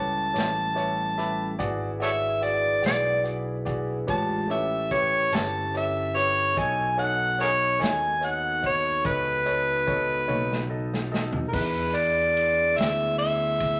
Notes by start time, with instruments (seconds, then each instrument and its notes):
Already playing: picked electric bass C#2, tonewheel organ G3 C#4 E4 A4, grand piano G4 B4 C#5, harmonica A5
0.34 picked electric bass A1, grand piano G4 B4 C#5, closed hi-hat
0.38 snare
0.75 grand piano G4 B4 C#5 E5, closed hi-hat
1.18 grand piano G4 B4 E5 B5, closed hi-hat
1.59 picked electric bass G#1, tonewheel organ D4 E4 G#4 B4, grand piano F#4 G#4 D5, kick, closed hi-hat
2.00 grand piano F#4 G#4 D5, harmonica A4 C#5 E5, closed hi-hat
2.42 grand piano F#4 G#4 D5, harmonica D5, closed hi-hat
2.82 picked electric bass B1, grand piano F#4 G#4 D5, harmonica D5, snare, closed hi-hat
3.24 grand piano F#4 G#4 D5, closed hi-hat
3.65 grand piano F#4 G#4 D5, kick, closed hi-hat
4.06 picked electric bass A1, tonewheel organ G#3 D4 F4 G4, grand piano G4 B4 C#5, harmonica A5, kick, closed hi-hat
4.47 tonewheel organ C#4 E4 G4 A4, grand piano G4 B4 C#5, closed hi-hat
4.51 harmonica E5
4.91 grand piano G4 B4 C#5, harmonica C#5, kick, closed hi-hat
5.32 picked electric bass G1, grand piano G4 B4 C#5, harmonica A5, snare, closed hi-hat
5.74 grand piano G4 B4 C#5, harmonica E5, closed hi-hat
6.15 grand piano G4 B4 C#5, harmonica C#5, closed hi-hat
6.53 tonewheel organ B3 D#4 F#4 A4
6.57 picked electric bass B1, grand piano D#4 A4 C#5, harmonica G#5, kick, closed hi-hat
6.98 grand piano D#4 A4 C#5, harmonica F#5, closed hi-hat
7.38 grand piano D#4 A4 C#5, harmonica G#4 A#4 C#5, closed hi-hat
7.79 picked electric bass D#2, grand piano D#4 A4 C#5, harmonica G#5, closed hi-hat
7.84 snare
8.21 grand piano D#4 A4 C#5, harmonica F#5, closed hi-hat
8.62 grand piano D#4 A4 C#5, harmonica C#5, kick, closed hi-hat
9.05 picked electric bass C#2, grand piano D#4 A4 C#5, harmonica B4, kick, closed hi-hat
9.45 grand piano D#4 A4 C#5, closed hi-hat
9.87 grand piano D#4 A4 C#5, kick, closed hi-hat
10.28 picked electric bass B1, grand piano D#4 A4 C#5, high tom
10.52 snare
10.69 grand piano D#4 A4 D#5
10.94 snare
11.12 grand piano D#4 A4 D#5, snare
11.33 floor tom
11.48 tonewheel organ B3 D4 E4 G#4, harmonica A#4
11.53 picked electric bass E2, harmonica B4, kick, crash
11.95 harmonica D5, ride
12.37 ride
12.77 picked electric bass D2, harmonica E5, snare, ride
13.18 harmonica E5, ride
13.60 kick, ride